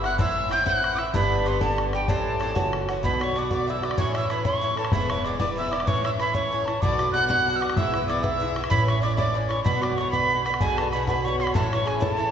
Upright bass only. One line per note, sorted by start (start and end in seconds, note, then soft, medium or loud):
0.00 0.17 G1 medium
0.20 1.12 A1 medium
1.14 2.06 G1 medium
2.08 2.55 A1 medium
2.56 3.02 F#1 medium
3.04 3.96 B1 medium
3.99 4.91 A1 medium
4.93 5.86 E1 medium
5.88 6.80 A1 medium
6.82 7.75 B1 medium
7.76 8.69 B1 medium
8.72 9.64 A1 medium
9.66 10.58 B1 medium
10.61 11.53 B1 medium
11.55 12.31 A1 medium